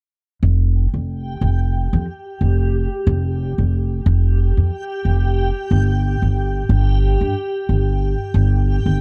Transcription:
0.43 upright bass F1, synth texture G4 G5
0.94 upright bass F1
1.41 upright bass F1
1.93 upright bass F2
2.41 upright bass F1
3.07 upright bass F1
3.58 upright bass F1
4.06 upright bass F1
4.57 upright bass F2
5.05 upright bass F1
5.71 upright bass G1
6.22 upright bass G1
6.69 upright bass G1
7.21 upright bass G2
7.69 upright bass G1
8.34 upright bass G1
8.86 upright bass G1

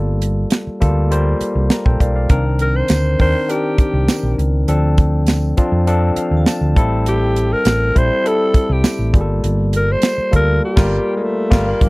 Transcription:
Already playing: fingered electric bass G1, tine electric piano G3 A#3 F4 A4
0.22 closed hi-hat
0.50 snare, closed hi-hat
0.67 muted fingered electric bass stroke
0.80 fingered electric bass D2, tine electric piano G3 A#3 F4 A4, kick, closed hi-hat
1.11 tine electric piano G3 A#3 F4 C5, closed hi-hat
1.41 muted fingered electric bass stroke, closed hi-hat
1.55 fingered electric bass C2
1.70 tine electric piano G4 A#4 A#5, snare, closed hi-hat
1.85 fingered electric bass A#1, tine electric piano A4 C5 G5, kick
2.00 fingered electric bass B1, tine electric piano A#4 D5 F5, kick, closed hi-hat
2.16 tine electric piano D5 F5
2.29 fingered electric bass C2, tine electric piano D#3 C4 D4 A#4, kick, closed hi-hat
2.59 alto saxophone A#4, closed hi-hat
2.76 alto saxophone C5
2.88 fingered electric bass D2, snare, closed hi-hat, tambourine
3.19 fingered electric bass D#2, tine electric piano D#3 C4 D4 A#4, alto saxophone C5, kick, open hi-hat
3.48 tine electric piano D#3 C4 D4 A#4, alto saxophone G4, closed hi-hat
3.78 muted fingered electric bass stroke, kick, closed hi-hat
3.93 fingered electric bass C2
4.08 snare, closed hi-hat, tambourine
4.23 fingered electric bass A#1
4.38 fingered electric bass C#2, closed hi-hat
4.68 fingered electric bass D2, tine electric piano F3 C4 D4 A4, closed hi-hat
4.98 kick, closed hi-hat
5.27 snare, closed hi-hat, tambourine
5.57 tine electric piano F3 C4 D4 F4, muted fingered electric bass stroke, kick, closed hi-hat
5.72 fingered electric bass F2
5.87 tine electric piano F3 C4 D4 A4, closed hi-hat
6.16 tine electric piano F5, vibraphone F5, muted fingered electric bass stroke, closed hi-hat
6.31 fingered electric bass D#2
6.37 vibraphone A5
6.46 tine electric piano A5, snare, closed hi-hat, tambourine
6.61 fingered electric bass D2
6.76 fingered electric bass A1, tine electric piano G3 C4 E4 A4, kick, closed hi-hat
7.06 alto saxophone G4, closed hi-hat
7.36 closed hi-hat
7.53 alto saxophone A#4
7.65 fingered electric bass A1, snare, closed hi-hat, tambourine
7.95 fingered electric bass A#1, tine electric piano G3 C4 E4 C5, alto saxophone C5, kick, closed hi-hat
8.24 tine electric piano G3 C4 E4 A4, alto saxophone A4, closed hi-hat
8.54 muted fingered electric bass stroke, kick, closed hi-hat
8.70 fingered electric bass C2, alto saxophone G4
8.84 snare, closed hi-hat, tambourine
8.99 fingered electric bass A1
9.13 fingered electric bass G1, tine electric piano G3 A#3 F4 G#4, kick, closed hi-hat
9.21 tine electric piano A4
9.44 fingered electric bass G1, closed hi-hat
9.73 alto saxophone A#4, closed hi-hat
9.92 alto saxophone C5
10.02 snare, closed hi-hat, tambourine
10.18 muted fingered electric bass stroke
10.32 fingered electric bass D2, tine electric piano G3 A#3 F4 A4, kick, closed hi-hat
10.36 alto saxophone A#4
10.65 alto saxophone G4
10.76 fingered electric bass G1, tine electric piano G3 A#3 F4 A#4, kick, snare, crash
11.16 alto saxophone G#3
11.24 alto saxophone A3
11.50 fingered electric bass G1, tine electric piano G3 A#3 F4 A#4, kick, snare, crash
11.68 alto saxophone A#3
11.80 fingered electric bass G1, tine electric piano F3 A#3 D4 G4, kick, closed hi-hat

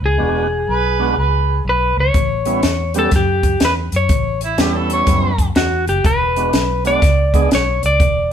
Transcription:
0.01 fingered electric bass C#2
0.06 clean electric guitar G#4
0.18 fingered electric bass E1, tonewheel organ G#3 B3 D4 F#4
0.68 fingered electric bass B1, harmonica B4
0.99 tonewheel organ G#3 B3 D4 F#4
1.17 fingered electric bass C#2, harmonica B4
1.65 fingered electric bass B1
1.69 clean electric guitar B4
1.97 fingered electric bass C#2, clean electric guitar C#5
2.14 fingered electric bass A1, kick, closed hi-hat
2.45 tonewheel organ G3 B3 C#4 E4, closed hi-hat
2.63 fingered electric bass E2, snare, closed hi-hat
2.94 tonewheel organ G3 B3 C#4 G4, closed hi-hat
2.99 clean electric guitar A4
3.11 fingered electric bass F#2, kick, snare, closed hi-hat
3.16 clean electric guitar G4
3.43 kick, closed hi-hat
3.60 fingered electric bass E2, snare, closed hi-hat
3.65 clean electric guitar B4
3.92 fingered electric bass F#2, closed hi-hat
3.96 clean electric guitar C#5
4.09 fingered electric bass A1, kick, closed hi-hat
4.41 closed hi-hat
4.45 harmonica E4
4.58 fingered electric bass E2, tonewheel organ G3 B3 C#4 E4, harmonica G4, snare, closed hi-hat
4.77 harmonica A4
4.90 harmonica C#5, closed hi-hat
5.07 fingered electric bass F#2, kick, snare, closed hi-hat
5.38 kick, closed hi-hat
5.55 fingered electric bass E2, clean electric guitar F#4, snare, closed hi-hat
5.87 fingered electric bass F#1, clean electric guitar G4, closed hi-hat
6.04 fingered electric bass E1, clean electric guitar B4, kick, closed hi-hat
6.36 tonewheel organ G#3 B3 D4 F#4, closed hi-hat
6.53 fingered electric bass B1, snare, closed hi-hat
6.85 tonewheel organ G#3 B3 D4 F#4, clean electric guitar D5, closed hi-hat
7.02 fingered electric bass C#2, kick, snare, closed hi-hat
7.34 tonewheel organ G#3 B3 D4 G#4, kick, closed hi-hat
7.51 fingered electric bass B1, clean electric guitar C#5, snare, closed hi-hat
7.83 fingered electric bass C#2, clean electric guitar D5, closed hi-hat
8.00 fingered electric bass E1, kick, closed hi-hat

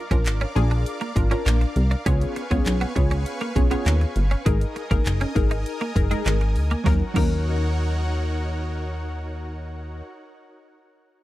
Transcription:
Already playing: supersaw synth A#4 D5 F5 D6
0.11 analog synth bass A#1, clean electric guitar C#4, synth stab D4 F4 A#4, kick, closed hi-hat
0.26 analog synth bass G#1, clap, closed hi-hat
0.41 clean electric guitar C#4, closed hi-hat
0.55 analog synth bass A#1, synth stab D4 F4 G#4, muted clean electric guitar stroke, closed hi-hat
0.71 clean electric guitar D4, closed hi-hat
0.86 closed hi-hat
1.01 clean electric guitar A#3, closed hi-hat
1.16 analog synth bass G#1, synth stab D4 F4 A#4, muted clean electric guitar stroke, kick, closed hi-hat
1.31 clean electric guitar C#4, synth stab D4 F4 A#4, closed hi-hat
1.46 analog synth bass A#1, clean electric guitar A#3, clap, closed hi-hat
1.61 muted clean electric guitar stroke, closed hi-hat
1.76 analog synth bass C2, closed hi-hat
1.91 clean electric guitar D4, closed hi-hat
2.06 analog synth bass C#2, synth stab B3 C#4 F4 G#4 C#5, clean electric guitar C#4, supersaw synth B4 G#5 C#6, kick, closed hi-hat
2.21 closed hi-hat
2.36 muted clean electric guitar stroke, closed hi-hat
2.51 analog synth bass C#2, synth stab B3 C#4 F4 G#4 C#5, clean electric guitar B3, kick, closed hi-hat
2.66 analog synth bass B1, clap, closed hi-hat
2.81 clean electric guitar B3, closed hi-hat
2.95 analog synth bass C#2, synth stab B3 C#4 F4 G#4 C#5, muted clean electric guitar stroke, kick, closed hi-hat
3.11 clean electric guitar C#4, closed hi-hat
3.26 closed hi-hat
3.41 clean electric guitar A#3, closed hi-hat
3.56 analog synth bass B1, synth stab B3 C#4 F4 G#4 C#5, muted clean electric guitar stroke, kick, closed hi-hat
3.70 synth stab B3 C#4 F4 G#4 C#5, clean electric guitar B3, closed hi-hat
3.86 analog synth bass D#2, clean electric guitar A#3, clap, closed hi-hat
4.01 muted clean electric guitar stroke, closed hi-hat
4.16 analog synth bass G1, closed hi-hat
4.31 clean electric guitar C#4, closed hi-hat
4.46 analog synth bass G#1, clean electric guitar G#3, synth stab D#4 G#4 A#4, supersaw synth A#4 D#5 G#5 D#6, kick, closed hi-hat
4.61 closed hi-hat
4.76 muted clean electric guitar stroke, closed hi-hat
4.91 analog synth bass G#1, clean electric guitar A#3, synth stab D#4 G#4 A#4, kick, closed hi-hat
5.06 analog synth bass F#1, clap, closed hi-hat
5.21 clean electric guitar C#4, closed hi-hat
5.35 analog synth bass G#1, synth stab D#4 G#4 A#4, muted clean electric guitar stroke, kick, closed hi-hat
5.51 clean electric guitar D#4, closed hi-hat
5.66 closed hi-hat
5.81 clean electric guitar A#3, closed hi-hat
5.96 analog synth bass F#1, synth stab D#4 G#4 A#4, muted clean electric guitar stroke, kick, closed hi-hat
6.11 clean electric guitar G#3, synth stab D#4 G#4 A#4, closed hi-hat
6.26 analog synth bass G#1, clean electric guitar G#3, clap, closed hi-hat
6.41 muted clean electric guitar stroke, closed hi-hat
6.56 analog synth bass D2, open hi-hat
6.71 clean electric guitar A#3, closed hi-hat
6.84 analog synth bass D#2, synth stab F#3 C#4 D#4, clean electric guitar A#3, supersaw synth D#4 F#4 A#4 C#5 F#5, kick, snare
6.88 synth stab A#4
7.14 analog synth bass D#2, synth stab F#3 C#4 D#4 A#4, clean electric guitar A#3, kick, crash

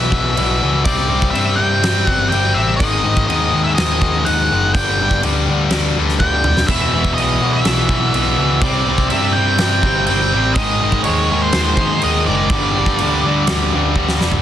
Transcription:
Already playing: picked electric bass B1, distorted electric guitar E2 B2 E3, lead electric guitar E5
0.12 picked electric bass B1, distorted electric guitar E2 B2 E3, kick
0.36 picked electric bass B1, distorted electric guitar E2 B2 E3, crash
0.62 picked electric bass C#2, distorted electric guitar E2 B2 E3
0.84 picked electric bass C2, distorted electric guitar C3 G3 C4, lead electric guitar D5, kick, crash
1.09 picked electric bass C2, distorted electric guitar C3 G3 C4
1.22 kick
1.31 picked electric bass G2, distorted electric guitar C3 G3 C4, lead electric guitar E5
1.35 crash
1.56 picked electric bass G2, distorted electric guitar C3 G3 C4, lead electric guitar G5
1.83 picked electric bass G2, distorted electric guitar C3 G3 C4, snare, crash
2.07 picked electric bass G1, distorted electric guitar C3 G3 C4, lead electric guitar F#5, kick
2.29 picked electric bass G1, distorted electric guitar C3, lead electric guitar G5, crash
2.33 distorted electric guitar G3 C4
2.54 picked electric bass A1, distorted electric guitar C3 G3 C4, lead electric guitar E5
2.76 distorted electric guitar G#2 D#3, lead electric guitar D#5
2.80 picked electric bass G#1, distorted electric guitar G#3, kick, crash
3.04 picked electric bass G#1, distorted electric guitar G#2 D#3 G#3
3.17 kick
3.27 picked electric bass D#2, distorted electric guitar G#2 D#3 G#3, lead electric guitar D#5, crash
3.53 picked electric bass D#2, distorted electric guitar G#2 D#3 G#3
3.64 lead electric guitar E5
3.75 distorted electric guitar G#2 D#3 G#3, lead electric guitar D#5, snare, crash
3.79 picked electric bass D#2
4.02 picked electric bass D#2, distorted electric guitar G#2 D#3 G#3, kick
4.25 picked electric bass D#2, distorted electric guitar G#2 D#3 G#3, lead electric guitar F#5, crash
4.52 picked electric bass F#1, distorted electric guitar G#2 D#3 G#3
4.74 picked electric bass G1, distorted electric guitar G2 D3 G3, lead electric guitar G5, kick, crash
5.00 picked electric bass G1, distorted electric guitar G2 D3 G3
5.11 kick
5.23 picked electric bass D2, distorted electric guitar G2 D3 G3, crash
5.49 picked electric bass D2, distorted electric guitar G2 D3 G3
5.70 picked electric bass D2, distorted electric guitar G2, snare, crash
5.75 distorted electric guitar D3 G3
5.98 picked electric bass D2, distorted electric guitar G2 D3 G3
6.09 snare
6.19 picked electric bass D2, distorted electric guitar G2 D3 G3, lead electric guitar G5, kick
6.44 picked electric bass E1, distorted electric guitar G2 D3 G3, mid tom
6.57 snare
6.67 picked electric bass E1, distorted electric guitar E2, lead electric guitar E5, kick, splash, crash
6.71 distorted electric guitar B2 E3
6.94 picked electric bass E1, distorted electric guitar E2 B2 E3
7.05 kick
7.14 picked electric bass B1, lead electric guitar D#5, crash
7.18 distorted electric guitar E2 B2 E3
7.41 picked electric bass B1, distorted electric guitar E2 B2 E3
7.54 lead electric guitar E5
7.65 picked electric bass B1, distorted electric guitar E2 B2 E3, snare, crash
7.89 picked electric bass B1, distorted electric guitar E2 B2 E3, kick
8.14 picked electric bass B1, distorted electric guitar E2 B2 E3, crash
8.38 picked electric bass C#2, distorted electric guitar E2 B2 E3
8.62 picked electric bass C2, distorted electric guitar C3 G3 C4, lead electric guitar D5, kick, crash
8.88 picked electric bass C2, distorted electric guitar C3 G3 C4
8.98 kick
9.10 picked electric bass G2, distorted electric guitar C3 G3 C4, lead electric guitar E5, crash
9.33 distorted electric guitar C3 G3 C4, lead electric guitar G5
9.38 picked electric bass G2
9.58 distorted electric guitar C3 G3 C4, snare, crash
9.62 picked electric bass G2
9.83 picked electric bass G1, distorted electric guitar C3 G3 C4, kick
10.07 picked electric bass G1, distorted electric guitar C3 G3 C4, lead electric guitar G5, crash
10.34 picked electric bass A1, distorted electric guitar C3 G3 C4
10.54 picked electric bass G#1, distorted electric guitar G#2, lead electric guitar D#5, kick, crash
10.58 distorted electric guitar D#3 G#3
10.82 picked electric bass G#1, distorted electric guitar G#2 D#3 G#3
10.92 kick
11.04 picked electric bass D#2, distorted electric guitar G#2 D#3 G#3, lead electric guitar C#5, crash
11.31 picked electric bass D#2, distorted electric guitar G#2 D#3 G#3
11.42 lead electric guitar C5
11.52 picked electric bass D#2, distorted electric guitar G#2 D#3 G#3, snare, crash
11.77 picked electric bass D#2, distorted electric guitar G#2 D#3 G#3, kick
12.02 picked electric bass D#2, distorted electric guitar G#2 D#3 G#3, lead electric guitar D#5, crash
12.26 picked electric bass F#1, distorted electric guitar G#2 D#3 G#3, lead electric guitar D5
12.49 picked electric bass G1, distorted electric guitar G2 D3 G3, kick, crash
12.77 picked electric bass G1, distorted electric guitar G2 D3 G3
12.86 kick
12.99 picked electric bass D2, distorted electric guitar G2 D3, crash
13.03 distorted electric guitar G3
13.24 picked electric bass D2, distorted electric guitar G2 D3 G3
13.47 picked electric bass D2, distorted electric guitar G2 D3 G3, snare, crash
13.74 picked electric bass D2, distorted electric guitar G2 D3 G3
13.96 picked electric bass D2, distorted electric guitar G2 D3 G3, kick
14.08 snare
14.21 picked electric bass E1, distorted electric guitar G2 D3 G3, snare
14.32 floor tom

